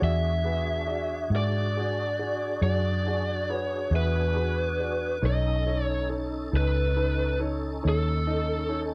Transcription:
0.00 E2 D4 F#4 G#4 D5 E5
0.44 F#4 G#4 B4
0.87 F#4 G#4 D5
1.30 G#2 F#4 G#4 E5
1.36 D5
1.77 F#4 G#4 D5
2.19 F#4 G#4 D5
2.61 F#2 F#4 G#4 D5
3.07 F#4 G#4 D5
3.50 F#4 G#4 B4 C#5
3.91 E2 F#4 G#4 E5
3.96 B4
4.36 F#4 G#4 B4
4.80 F#4 G#4 D5
5.22 B1 C#4 D#4 A4 C#5
5.26 D#5
5.66 D#4 A4 C#5
5.84 C#5
6.09 D#4 A4 C#5
6.52 C#2 D#4 A4 B4
6.56 B4
6.96 D#4 A4 B4
7.40 D#4 A4 C#5
7.83 D#2 D#4 A4 C#5
7.89 A4
8.27 D#4 A4 D#5
8.69 D#4 A4 C#5

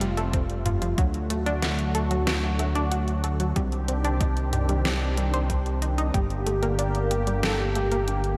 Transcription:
Already playing: F1 C3 G3 A3 F4
0.01 G3, closed hi-hat
0.17 A3, closed hi-hat
0.33 C4, kick, closed hi-hat
0.50 closed hi-hat
0.66 F4, closed hi-hat, mid tom
0.82 F3, closed hi-hat
0.98 D2 D3 F#3 F#4, kick, closed hi-hat
1.14 closed hi-hat
1.30 A3, closed hi-hat
1.46 D4, closed hi-hat
1.62 F#4, snare, closed hi-hat
1.79 closed hi-hat
1.95 A4, closed hi-hat
2.11 F#3, closed hi-hat
2.27 F#3, snare, closed hi-hat
2.59 A3, closed hi-hat
2.75 D4, closed hi-hat
2.92 F#4, closed hi-hat
3.08 closed hi-hat
3.24 A4, closed hi-hat
3.40 F#3, closed hi-hat
3.56 C2 D#3 G3 C4 D4 G4, kick, closed hi-hat
3.72 closed hi-hat
3.88 C4, closed hi-hat
4.04 D4, closed hi-hat
4.21 D#4, kick, closed hi-hat
4.37 closed hi-hat
4.53 G4, closed hi-hat, mid tom
4.69 G3, closed hi-hat
4.85 G3, snare, closed hi-hat
5.17 G3, closed hi-hat
5.34 C5, closed hi-hat
5.50 G3, kick, closed hi-hat
5.66 closed hi-hat
5.82 D#4, closed hi-hat
5.98 D#4, closed hi-hat
6.14 G1 D3 G3 A#3 G4, kick, closed hi-hat
6.30 closed hi-hat
6.46 A3, closed hi-hat
6.63 A#3, closed hi-hat
6.78 D4 A#4, closed hi-hat
6.95 closed hi-hat
7.11 G4, closed hi-hat
7.27 G3, closed hi-hat
7.43 G3 A4, snare, closed hi-hat
7.75 A3 G4, closed hi-hat
7.92 A#3, closed hi-hat
8.08 D4, closed hi-hat
8.24 closed hi-hat

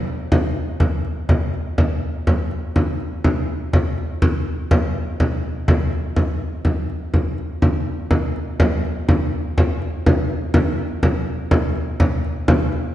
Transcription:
0.07 frame drum
0.32 frame drum
0.80 frame drum
1.05 frame drum
1.29 frame drum
1.54 frame drum
1.78 frame drum
2.27 frame drum
2.51 frame drum
2.76 frame drum
3.00 frame drum
3.24 frame drum
3.73 frame drum
3.98 frame drum
4.22 frame drum
4.71 frame drum
5.20 frame drum
5.68 frame drum
5.93 frame drum
6.16 frame drum
6.65 frame drum
6.90 frame drum
7.14 frame drum
7.38 frame drum
7.62 frame drum
8.11 frame drum
8.36 frame drum
8.60 frame drum
8.85 frame drum
9.09 frame drum
9.58 frame drum
9.82 frame drum
10.06 frame drum
10.30 frame drum
10.54 frame drum
11.03 frame drum
11.51 frame drum
11.76 frame drum
12.00 frame drum
12.24 frame drum
12.48 frame drum
12.72 frame drum

